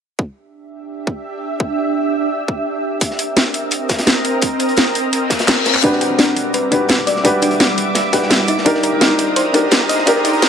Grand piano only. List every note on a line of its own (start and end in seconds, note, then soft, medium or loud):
5.82 6.69 D4 medium
5.82 6.69 F#4 medium
5.82 6.70 G4 medium
5.82 6.70 B4 loud
6.71 7.22 D4 medium
6.71 7.22 F#4 medium
6.71 7.23 G4 medium
6.71 7.23 B4 medium
7.24 8.10 D4 medium
7.24 8.11 F#4 medium
7.24 8.11 G4 medium
7.24 8.11 B4 loud
8.12 8.47 D4 medium
8.12 8.47 F#4 medium
8.12 8.47 G4 medium
8.12 8.47 B4 medium
8.65 9.51 D4 medium
8.65 9.52 D#4 medium
8.65 9.52 G4 medium
8.65 9.53 A#4 loud
9.53 10.04 D4 medium
9.53 10.05 D#4 medium
9.53 10.05 G4 medium
9.53 10.05 A#4 medium
10.06 10.49 D4 medium
10.06 10.49 D#4 medium
10.06 10.49 G4 medium
10.06 10.49 A#4 loud